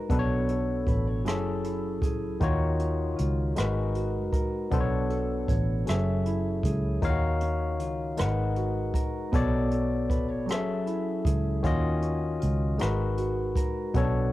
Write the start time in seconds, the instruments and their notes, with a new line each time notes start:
Already playing: tine electric piano G#3 D#4 F#4 A#4 B4, clean electric guitar F#4 A#4
0.09 fingered electric bass B1, tine electric piano B2 B3 D4 A4 B4, clean electric guitar B3, kick, closed hi-hat
0.19 tine electric piano C#5
0.49 clean electric guitar A4, closed hi-hat
0.87 fingered electric bass A1, clean electric guitar B4, kick, closed hi-hat
1.07 clean electric guitar C#5
1.24 fingered electric bass F#1, tine electric piano F#3 C#4 E4 G#4 A4, clean electric guitar F#3, cross-stick, closed hi-hat
1.63 clean electric guitar E4, closed hi-hat
2.02 fingered electric bass C#2, clean electric guitar G#4, kick, closed hi-hat
2.40 fingered electric bass D#2, tine electric piano D#3 D#4 F4 F#4 C#5, clean electric guitar D#3, kick, closed hi-hat
2.79 clean electric guitar C#4, closed hi-hat
3.17 fingered electric bass C#2, clean electric guitar F4, closed hi-hat
3.56 fingered electric bass G#1, tine electric piano G#3 D#4 F#4 A#4 B4, clean electric guitar G#3, cross-stick, closed hi-hat
3.94 clean electric guitar F#4, closed hi-hat
4.33 clean electric guitar A#4, kick, closed hi-hat
4.70 fingered electric bass B1, tine electric piano B2 B3 D4 A4 C5, clean electric guitar B3, kick, closed hi-hat
4.80 tine electric piano C#5
5.10 clean electric guitar A4, closed hi-hat
5.48 fingered electric bass A1, clean electric guitar C#5, kick, closed hi-hat
5.86 fingered electric bass F#1, tine electric piano F#3 C#4 G#4 A4 E5, clean electric guitar F#3, cross-stick, closed hi-hat
6.26 clean electric guitar E4, closed hi-hat
6.63 fingered electric bass C#2, clean electric guitar G#4, kick, closed hi-hat
7.02 fingered electric bass D#2, tine electric piano D#3 D#4 F4 C#5 F5, clean electric guitar D#3, kick, closed hi-hat
7.09 tine electric piano F#4
7.41 clean electric guitar C#4, closed hi-hat
7.80 fingered electric bass C#2, clean electric guitar F4, closed hi-hat
8.17 fingered electric bass G#1, tine electric piano G#3 D#4 A#4 B4 F#5, clean electric guitar G#3, cross-stick, closed hi-hat
8.56 clean electric guitar F#4, closed hi-hat
8.94 clean electric guitar A#4, kick, closed hi-hat
9.32 fingered electric bass B1, tine electric piano B2 B3 A4 C#5 D5, clean electric guitar B3, kick, closed hi-hat
9.71 clean electric guitar A4, closed hi-hat
10.10 fingered electric bass A1, clean electric guitar B4, kick, closed hi-hat
10.29 clean electric guitar C#5
10.46 clean electric guitar F#3, tine electric piano F#3 C#4 G#4, closed hi-hat
10.50 fingered electric bass F#1, tine electric piano A4 E5, cross-stick
10.86 clean electric guitar E4, closed hi-hat
11.25 fingered electric bass C#2, clean electric guitar G#4, kick, closed hi-hat
11.63 fingered electric bass D#2, clean electric guitar D#3, tine electric piano D#3 C#4 F4 F#4 D#5, kick, closed hi-hat
12.01 clean electric guitar C#4, closed hi-hat
12.40 fingered electric bass C#2, clean electric guitar F4, closed hi-hat
12.78 fingered electric bass G#1, clean electric guitar G#3, tine electric piano G#3 D#4 F#4 A#4 B4, cross-stick, closed hi-hat
13.17 clean electric guitar F#4, closed hi-hat
13.56 clean electric guitar A#4, kick, closed hi-hat
13.94 fingered electric bass B1, tine electric piano B2 B3 C#4 A4 C#5, clean electric guitar B3, kick, closed hi-hat
14.02 tine electric piano D4